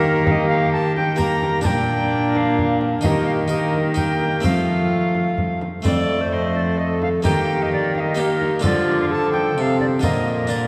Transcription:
Already playing: D#3 A#3 G4 A#4
0.04 frame drum
0.25 A#3 G4 F5, frame drum
0.31 D#5
0.49 F5
0.73 A5
0.96 G5, frame drum
1.16 A#3 G4 A#4 A#5, frame drum
1.42 frame drum
1.61 A#2 A#3 D4 A#4 A5, frame drum
1.66 G5
2.32 G5, frame drum
2.37 F5
2.59 frame drum
2.81 frame drum
3.01 D#3 A#3 D#4 G4 A#4 F5, frame drum
3.06 D#5
3.26 F5
3.48 A#3 D#4 G4 A#4 D#5
3.74 frame drum
3.94 A#3 D#4 G4 A#4 G5, frame drum
4.21 frame drum
4.41 F3 A3 C4 F4 A4 F5, frame drum
4.45 A3
5.15 frame drum
5.38 frame drum
5.61 frame drum
5.82 F2 A3 C4 F4 A4 D5, frame drum
6.21 C5
6.33 C5 D#5
6.56 D5, frame drum
6.77 A4 D#5
7.02 F5, frame drum
7.22 D#3 A#3 D#4 G4 G5, frame drum
7.62 D#5
7.73 D5
7.95 F5, frame drum
8.00 D#5
8.15 A#3 D#4 G4
8.20 A#4
8.41 frame drum
8.59 D3 F3 D4 F4 A4
8.64 D3 F4 D5, frame drum
9.01 F5
9.10 F3 A4 A5
9.32 G5, frame drum
9.56 C3 F3 G5
9.61 F5
9.80 D5, frame drum
10.00 A#2 D3 F3 F4 A#4 D#5, frame drum
10.04 A#2 A#4
10.47 D3 D4 F4 A#4 D5

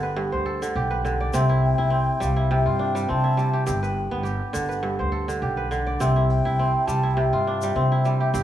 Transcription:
Already playing: G1 G2 D3 B3 E4 G4
0.03 B4
0.16 G2
0.32 D2 C5
0.46 A4
0.62 D3, shaker
0.75 B1 G4
0.91 B4
1.05 D3, shaker
1.20 D5
1.33 C2 C3 C4, shaker
1.49 E4
1.65 G5
1.78 C2 E4
1.90 C4
2.20 C2 G3 F5, shaker
2.36 E4
2.51 C3 G5
2.66 G2 F4
2.79 D4
2.95 G3, shaker
3.08 C3 C4 A5
3.24 E4
3.37 G3, shaker
3.53 G4
3.66 G1 G2 G4 G5, shaker
3.83 B4, shaker
4.11 G1 B3
4.23 G4, shaker
4.53 G1 D3, shaker
4.69 B4, shaker
4.83 G2
4.99 D2 C5
5.12 A4
5.28 D3, shaker
5.42 B1 G4
5.57 B4
5.71 D3, shaker
5.87 D5
6.00 C2 C3 C4, shaker
6.16 E4
6.30 G5
6.45 E4
6.59 C4
6.86 C2 G3 A5, shaker
7.03 E4
7.11 G5 A5
7.17 C3
7.33 G2 F4
7.47 D4
7.62 G3, shaker
7.74 C3 C4 E5
7.81 E5
7.90 E4 E5
7.98 E5
8.04 G3 E5, shaker
8.13 E5
8.20 G4 E5
8.34 G1 G2 G4, shaker

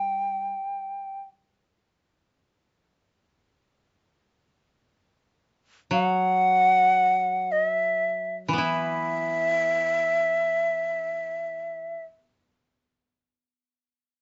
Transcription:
Already playing: G3 G5
5.91 F#3 F#5
7.52 D#5
7.67 E5
8.48 E3
8.53 B3
8.58 E4 E5

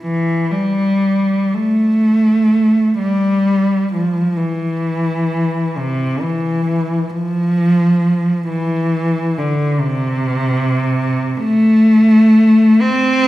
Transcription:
0.02 E3
0.52 G3
1.54 A3
2.98 G3
3.93 F3
4.37 E3
5.77 C3
6.21 E3
7.10 F3
8.49 E3
9.38 D3
9.81 C3
11.43 A3
12.82 C4

